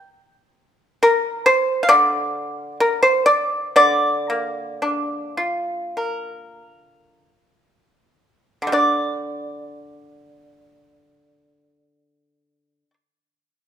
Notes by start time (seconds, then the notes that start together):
1.03 A#4
1.46 C5
1.83 F5
1.89 D3 D5
2.80 A#4
3.03 C5
3.26 D5
3.76 D3 D5
4.30 A#3
4.82 D4
5.37 F4
5.97 A#4
8.62 D3
8.67 G3
8.72 D4 D5